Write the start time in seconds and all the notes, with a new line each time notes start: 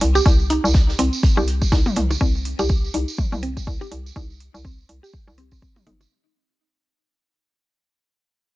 Already playing: impact
0.01 C2, closed hi-hat, open hi-hat
0.15 G4, tambourine
0.26 C2, kick, closed hi-hat, tambourine
0.39 tambourine
0.50 D#4, closed hi-hat, open hi-hat
0.64 C2, tambourine
0.74 kick, snare, closed hi-hat
0.88 snare, tambourine
0.99 C2 C4, closed hi-hat, open hi-hat
1.13 tambourine
1.23 kick, closed hi-hat, tambourine
1.37 C2 G4, tambourine, percussion blips
1.48 closed hi-hat, open hi-hat
1.61 kick, tambourine
1.72 C2 D#4, kick, snare, closed hi-hat, tambourine
1.86 mid tom, tambourine, percussion blips
1.96 C2, closed hi-hat, mid tom, open hi-hat
2.10 tambourine, percussion blips
2.21 C2 C4, kick, tambourine
2.35 tambourine
2.45 open hi-hat
2.59 C2 G4, tambourine
2.69 kick, tambourine
2.84 tambourine
2.94 C2 D#4, open hi-hat
3.08 tambourine
3.18 kick, mid tom, tambourine
3.32 C2, mid tom, tambourine
3.43 C4, open hi-hat
3.57 kick, tambourine
3.67 C2, kick, tambourine
3.81 G4, tambourine, percussion blips
3.92 C2, open hi-hat
4.06 tambourine
4.16 C2 D#4, kick, tambourine
4.30 tambourine
4.40 open hi-hat
4.54 C2, tambourine
4.65 C4, kick, tambourine
4.79 tambourine
4.89 C2, open hi-hat
5.03 G4, tambourine
5.13 kick, tambourine
5.27 C2, tambourine, percussion blips
5.38 C4, open hi-hat
5.51 C4, kick, tambourine
5.62 G1 C4, kick, tambourine
5.76 mid tom, tambourine, percussion blips
5.87 G1 D#4, mid tom, open hi-hat
6.01 tambourine, percussion blips